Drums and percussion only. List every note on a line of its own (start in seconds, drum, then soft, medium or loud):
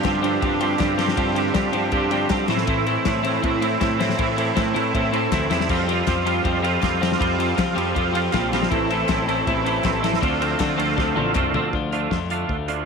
0.04 kick loud
0.04 snare loud
0.04 clap loud
0.04 ride loud
0.24 ride medium
0.42 kick loud
0.42 ride loud
0.61 ride medium
0.79 kick loud
0.79 snare medium
0.79 clap medium
0.79 ride loud
0.99 snare medium
0.99 ride medium
1.08 snare medium
1.17 kick loud
1.17 ride loud
1.36 ride medium
1.54 kick loud
1.54 snare loud
1.54 clap loud
1.54 ride loud
1.73 ride medium
1.92 kick loud
1.92 ride medium
2.11 ride medium
2.30 kick loud
2.30 snare loud
2.30 clap loud
2.30 ride loud
2.48 snare medium
2.48 ride medium
2.57 snare medium
2.67 kick loud
2.67 ride loud
2.87 ride medium
3.05 kick loud
3.05 snare loud
3.05 clap loud
3.05 ride loud
3.25 ride medium
3.43 kick loud
3.43 ride loud
3.62 ride medium
3.81 kick loud
3.81 snare loud
3.81 clap loud
3.81 ride loud
4.00 snare medium
4.00 ride medium
4.09 snare medium
4.19 kick loud
4.19 ride loud
4.38 ride medium
4.57 kick loud
4.57 snare loud
4.57 clap loud
4.57 ride loud
4.76 ride medium
4.95 kick loud
4.95 ride loud
5.13 ride medium
5.32 kick loud
5.32 snare loud
5.32 clap loud
5.32 ride loud
5.51 snare medium
5.51 ride medium
5.60 snare loud
5.69 kick loud
5.69 crash loud
5.89 ride medium
6.07 kick loud
6.07 snare loud
6.07 clap loud
6.07 ride medium
6.27 ride medium
6.45 kick loud
6.45 ride medium
6.64 ride medium
6.82 kick medium
6.82 snare loud
6.82 clap loud
6.82 ride loud
7.03 snare medium
7.03 ride medium
7.12 snare medium
7.21 kick loud
7.21 ride loud
7.40 ride medium
7.58 kick loud
7.58 snare loud
7.58 clap loud
7.58 ride loud
7.78 ride medium
7.96 kick loud
7.96 ride loud
8.15 ride medium
8.33 kick loud
8.33 snare loud
8.33 clap loud
8.33 ride medium
8.53 snare medium
8.53 ride medium
8.63 snare loud
8.71 kick loud
8.71 ride loud
8.90 ride medium
9.08 kick loud
9.08 snare loud
9.08 clap loud
9.08 ride medium
9.29 ride medium
9.47 kick loud
9.47 ride loud
9.66 ride medium
9.84 kick loud
9.84 snare loud
9.84 clap loud
9.84 ride medium
10.04 snare medium
10.04 ride medium
10.14 snare medium
10.23 kick loud
10.23 ride loud
10.42 ride medium
10.60 kick loud
10.60 snare loud
10.60 clap loud
10.60 ride loud
10.80 ride medium
10.98 kick loud
10.98 snare medium
11.17 high tom medium
11.35 kick loud
11.35 clap loud
11.35 mid tom medium
11.54 floor tom loud
11.73 kick medium
11.92 closed hi-hat medium
12.11 kick medium
12.11 snare medium
12.30 closed hi-hat medium
12.49 kick medium
12.68 closed hi-hat medium